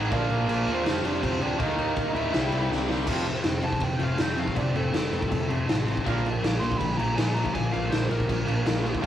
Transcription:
Already playing: distorted electric guitar G#2, overdriven electric guitar G#3 C4 D#4
0.09 picked electric bass A#1, distorted electric guitar A#2 F3 A#3, overdriven electric guitar A#2 F3 A#3 D4, lead electric guitar D4 D5, kick, crash
0.30 picked electric bass A#1, lead electric guitar A#3 A#4, crash
0.48 picked electric bass A#1, lead electric guitar A#3 A#4, crash
0.65 picked electric bass D#2, distorted electric guitar A#2 F3 A#3, crash
0.74 lead electric guitar C4 C5
0.84 picked electric bass F1, overdriven electric guitar F2 C3 F3 A3 C4, distorted electric guitar F2 C3 F3, snare, crash
1.03 picked electric bass F1, lead electric guitar D4 D5, crash
1.23 picked electric bass F1, lead electric guitar C4 C5, kick, crash
1.38 picked electric bass D2, distorted electric guitar F2 C3 F3, lead electric guitar D5, crash
1.42 lead electric guitar D4
1.57 picked electric bass D#2, distorted electric guitar D#3 A#3 D#4, overdriven electric guitar D#3 G3, lead electric guitar D#4 D#5, kick, crash
1.61 overdriven electric guitar A#3 D#4
1.78 picked electric bass D#2, crash
1.96 picked electric bass D#2, kick, crash
2.13 picked electric bass D#2, distorted electric guitar D#3 A#3 D#4, lead electric guitar E4 E5, crash
2.30 distorted electric guitar C3 G3 C4, overdriven electric guitar C3 G3 A#3
2.34 picked electric bass C2, overdriven electric guitar E4, snare, crash
2.52 picked electric bass C2, crash
2.71 picked electric bass C2, snare
2.87 picked electric bass C2, distorted electric guitar C3 G3 C4, snare
3.05 picked electric bass F1, distorted electric guitar F2 C3 F3, overdriven electric guitar F2 C3 F3 A3, kick, crash
3.10 overdriven electric guitar C4
3.24 distorted electric guitar F2 C3, crash
3.44 picked electric bass F1, distorted electric guitar F2 C3, snare, crash
3.61 picked electric bass F1, distorted electric guitar F2 C3, lead electric guitar A5, crash
3.72 kick
3.80 picked electric bass F1, distorted electric guitar F2 C3, lead electric guitar G5, kick, crash
3.99 picked electric bass F1, distorted electric guitar F2 C3, overdriven electric guitar C3 F3 A3 C4, crash
4.03 overdriven electric guitar F2, lead electric guitar F5
4.16 distorted electric guitar F2 C3, overdriven electric guitar F2 C3 F3 A3, picked electric bass F2, snare, crash
4.21 overdriven electric guitar C4, lead electric guitar G5
4.36 distorted electric guitar F2 C3, lead electric guitar F5, crash
4.48 kick
4.54 picked electric bass F1, distorted electric guitar F2 C3, overdriven electric guitar F2 C3 F3 A3 C4, lead electric guitar D5, kick, crash
4.73 picked electric bass F1, distorted electric guitar F2 C3, lead electric guitar A4, crash
4.92 picked electric bass F1, distorted electric guitar F2 C3, snare, crash
5.10 picked electric bass F1, distorted electric guitar F2 C3, crash
5.22 kick
5.28 distorted electric guitar F2 C3, kick, crash
5.32 picked electric bass F1
5.48 picked electric bass F1, distorted electric guitar F2 C3, overdriven electric guitar C3 F3 A3 C4, crash
5.52 overdriven electric guitar F2
5.65 overdriven electric guitar F2 C3 F3 A3 C4, distorted electric guitar F2 C3
5.69 picked electric bass A1, snare, crash
5.85 distorted electric guitar F2 C3, crash
5.97 kick
6.03 picked electric bass A#1, overdriven electric guitar A#2 F3 A#3 D4, distorted electric guitar A#2 F3 A#3, kick, crash
6.23 distorted electric guitar A#2 F3, crash
6.42 picked electric bass A#1, distorted electric guitar A#2 F3, snare, crash
6.60 picked electric bass A#1, distorted electric guitar A#2 F3, lead electric guitar C6, crash
6.72 kick
6.78 picked electric bass A#1, distorted electric guitar A#2 F3, lead electric guitar B5, kick, crash
6.96 picked electric bass A#1, distorted electric guitar A#2 F3, overdriven electric guitar F3 A#3 D4, lead electric guitar A#5, crash
7.00 overdriven electric guitar A#2
7.15 overdriven electric guitar A#2 F3 A#3 D4, distorted electric guitar A#2 F3, picked electric bass A#2, lead electric guitar G#5, snare, crash
7.34 distorted electric guitar A#2 F3, lead electric guitar A#5, crash
7.46 kick
7.53 picked electric bass A#1, overdriven electric guitar A#2 F3 A#3, distorted electric guitar A#2 F3, lead electric guitar G#5, kick, crash
7.57 overdriven electric guitar D4
7.72 picked electric bass A#1, distorted electric guitar A#2 F3, lead electric guitar F5, crash
7.89 picked electric bass A#1, distorted electric guitar A#2 F3, lead electric guitar C5, snare, crash
8.09 picked electric bass A#1, distorted electric guitar A#2 F3, lead electric guitar A#4, crash
8.20 kick
8.29 picked electric bass A#1, distorted electric guitar A#2 F3, kick, crash
8.46 picked electric bass A#1, distorted electric guitar A#2 F3, overdriven electric guitar A#2 F3 A#3 D4, crash
8.64 picked electric bass A#1, overdriven electric guitar A#2 F3 A#3, distorted electric guitar A#2 F3, snare, crash
8.69 overdriven electric guitar D4
8.84 distorted electric guitar A#2 F3, crash
8.95 kick
9.01 overdriven electric guitar F2 C3 F3 A3, distorted electric guitar F2 C3 F3

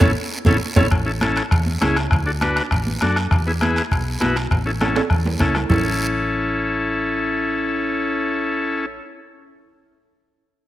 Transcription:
0.00 fingered electric bass A1, transistor combo organ C#4 E4 A4, resonator guitar played with a steel bar E4 A4 C#5, bombo low, high conga, high timbale, long guiro
0.45 fingered electric bass A1, transistor combo organ C#4 E4 A4, resonator guitar played with a steel bar E4 A4 C#5, bombo low, high conga, high timbale, long guiro
0.76 fingered electric bass A1, transistor combo organ C#4 E4 A4, resonator guitar played with a steel bar E4 A4 C#5, bombo low, high conga, high timbale, long guiro
0.91 fingered electric bass A1, bombo low, bombo rim, high timbale, long guiro
1.06 transistor combo organ C#4 E4 A4
1.21 transistor combo organ C#4 E4 A4, bombo rim, high conga, high timbale, short guiro
1.36 bombo rim, high timbale, short guiro
1.51 fingered electric bass E2, bombo low, bombo rim, high timbale, long guiro
1.66 high conga
1.81 fingered electric bass C#2, transistor combo organ C#4 E4 G#4, bombo rim, high conga, high timbale, low timbale, short guiro
1.96 bombo rim, high timbale, short guiro
2.11 fingered electric bass D2, bombo low, bombo rim, high timbale, long guiro
2.26 transistor combo organ D4 F#4 A4
2.41 transistor combo organ D4 F#4 B4, bombo rim, high conga, high timbale, short guiro
2.56 bombo rim, high timbale, short guiro
2.71 fingered electric bass A1, bombo low, bombo rim, high timbale, long guiro
2.87 high conga
3.01 fingered electric bass F#2, transistor combo organ D4 F#4 A4, bombo rim, high conga, high timbale, short guiro
3.16 bombo rim, high timbale, short guiro
3.31 fingered electric bass E2, bombo low, bombo rim, high timbale, long guiro
3.47 transistor combo organ B3 E4 G#4
3.61 transistor combo organ B3 E4 G#4, bombo rim, high conga, high timbale, short guiro
3.76 bombo rim, high timbale, short guiro
3.91 fingered electric bass B1, bombo low, bombo rim, high timbale, long guiro
4.20 fingered electric bass B1, transistor combo organ B3 E4 F#4, bombo rim, high conga, high timbale, low timbale, short guiro
4.36 bombo rim, high timbale, short guiro
4.51 fingered electric bass A1, bombo low, bombo rim, high timbale, long guiro
4.66 transistor combo organ C#4 E4 A4
4.80 transistor combo organ C#4 E4 A4, bombo rim, high conga, high timbale, short guiro
4.96 bombo rim, high timbale, short guiro
5.10 fingered electric bass E2, bombo low, bombo rim, long guiro
5.25 high conga, low timbale
5.39 fingered electric bass C#2, transistor combo organ C#4 E4 A4, bombo low, bombo rim, high conga, short guiro
5.55 bombo rim, low timbale, short guiro
5.69 fingered electric bass A1, transistor combo organ C#4 E4 A4, bombo low, low conga, low timbale, long guiro

